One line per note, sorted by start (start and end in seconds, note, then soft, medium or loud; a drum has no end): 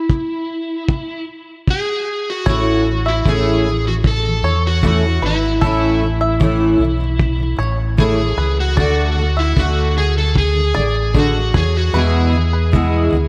0.00 1.24 E4 medium
0.10 kick medium
0.89 kick loud
1.68 2.30 G#4 medium
1.68 kick medium
2.30 2.48 F#4 medium
2.46 3.21 A1 medium
2.46 2.84 A2 medium
2.46 2.86 E3 medium
2.46 2.86 A3 medium
2.46 2.86 C#4 medium
2.46 2.87 E4 medium
2.46 3.09 F#4 medium
2.46 2.83 C#5 loud
2.46 kick medium
2.85 3.17 A2 soft
2.89 3.19 E3 soft
3.06 3.27 E4 medium
3.06 3.61 E5 medium
3.26 4.40 A1 medium
3.26 3.63 A2 medium
3.26 3.65 E3 medium
3.26 3.65 A3 medium
3.26 3.66 C#4 medium
3.26 3.66 E4 medium
3.26 3.88 G#4 medium
3.26 kick medium
3.65 3.83 A2 medium
3.65 3.86 E3 medium
3.84 4.16 A2 soft
3.84 4.17 E3 medium
3.84 3.93 F#4 medium
4.04 4.66 A4 medium
4.04 kick loud
4.23 4.41 A2 soft
4.23 4.45 E3 soft
4.42 5.18 E2 medium
4.42 4.75 A2 medium
4.42 4.76 E3 medium
4.42 4.62 C#5 medium
4.67 4.85 F#4 medium
4.82 5.00 A2 medium
4.82 5.03 E3 medium
4.82 5.03 A3 medium
4.82 5.03 C#4 medium
4.82 5.03 E4 medium
4.82 kick medium
4.87 5.26 F#4 medium
5.01 5.22 A2 soft
5.01 5.23 E3 medium
5.21 5.58 G#1 medium
5.21 5.41 B4 medium
5.26 5.56 E3 medium
5.26 7.57 E4 medium
5.61 6.76 A1 medium
5.61 6.00 A2 medium
5.61 6.02 E3 medium
5.61 6.02 A3 medium
5.61 6.02 C#4 medium
5.61 6.02 E4 medium
5.61 5.99 A4 medium
5.61 kick medium
6.01 6.33 A2 soft
6.01 6.35 E3 medium
6.21 6.77 E5 medium
6.40 6.77 A2 medium
6.40 6.80 E3 medium
6.40 6.80 A3 medium
6.40 6.80 C#4 medium
6.40 6.81 E4 medium
6.40 kick medium
6.78 7.55 B1 medium
6.78 6.96 A2 medium
6.82 7.00 E3 medium
6.97 7.30 A2 medium
6.97 7.32 E3 medium
7.19 kick loud
7.36 7.55 A2 soft
7.36 7.59 E3 medium
7.56 8.34 A1 medium
7.56 7.89 A2 medium
7.56 7.91 E3 medium
7.56 7.78 C#5 medium
7.97 8.15 A2 medium
7.97 8.18 E3 medium
7.97 8.18 A3 medium
7.97 8.19 C#4 medium
7.97 8.19 E4 medium
7.97 8.60 G#4 medium
7.97 kick medium
8.16 8.35 A2 soft
8.16 8.39 E3 medium
8.36 8.74 C#2 medium
8.36 8.69 A2 soft
8.36 8.71 E3 medium
8.36 8.57 B4 medium
8.60 8.79 F#4 medium
8.75 9.53 D2 medium
8.75 9.15 D3 medium
8.75 9.17 A3 medium
8.75 9.17 D4 medium
8.75 9.17 F#4 medium
8.75 9.15 D5 medium
8.75 kick medium
8.80 9.40 F#4 medium
9.16 9.48 D3 soft
9.16 9.50 A3 medium
9.37 9.58 E4 medium
9.37 9.93 E5 medium
9.56 10.71 D2 medium
9.56 9.94 D3 medium
9.56 9.97 A3 medium
9.56 9.97 D4 medium
9.56 9.97 F#4 medium
9.56 kick loud
9.96 10.14 D3 medium
9.96 10.18 A3 medium
9.96 10.15 G#4 medium
10.16 10.48 D3 soft
10.16 10.49 A3 soft
10.16 10.37 A4 medium
10.36 11.18 G#4 loud
10.36 kick loud
10.54 10.73 D3 soft
10.54 10.76 A3 soft
10.74 11.51 A1 medium
10.74 11.06 D3 medium
10.74 11.08 A3 medium
10.74 10.94 D5 medium
11.14 11.33 D3 medium
11.14 11.35 A3 medium
11.14 11.35 D4 medium
11.14 11.35 F#4 medium
11.14 kick medium
11.18 11.57 F#4 medium
11.34 11.54 D3 soft
11.34 11.56 A3 soft
11.53 11.85 E2 soft
11.53 11.91 E2 medium
11.53 11.86 B2 medium
11.53 11.87 E3 medium
11.53 11.76 G#4 medium
11.53 11.73 C#5 medium
11.53 kick loud
11.77 11.96 F#4 medium
11.93 12.30 E2 medium
11.93 13.08 E2 medium
11.93 12.32 B2 medium
11.93 12.34 E3 medium
11.93 12.34 G#3 medium
11.93 12.34 B3 medium
11.93 12.34 E4 medium
11.93 12.32 B4 medium
11.98 13.28 G#4 medium
12.32 12.64 E2 medium
12.32 12.65 B2 soft
12.32 12.66 E3 medium
12.53 13.09 B4 medium
12.72 13.09 E2 medium
12.72 13.12 B2 medium
12.72 13.12 E3 medium
12.72 13.13 G#3 medium
12.72 13.13 B3 medium
12.72 13.13 E4 medium
12.72 kick medium
13.11 13.28 D2 medium
13.11 13.28 E2 medium
13.11 13.28 B2 medium
13.11 13.28 E3 medium